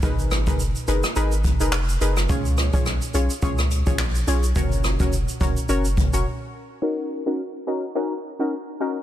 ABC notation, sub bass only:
X:1
M:4/4
L:1/16
Q:"Swing 16ths" 1/4=106
K:D#m
V:1 name="Sub bass" clef=bass
G,,,3 F,,,2 z F,,, z G,,,3 E,,,3 F,,,2 | C,,3 B,,,2 z B,,, z C,,3 A,,,3 B,,,2 | F,,,3 E,,,2 z E,,, z F,,,3 E,,, z4 | z16 |]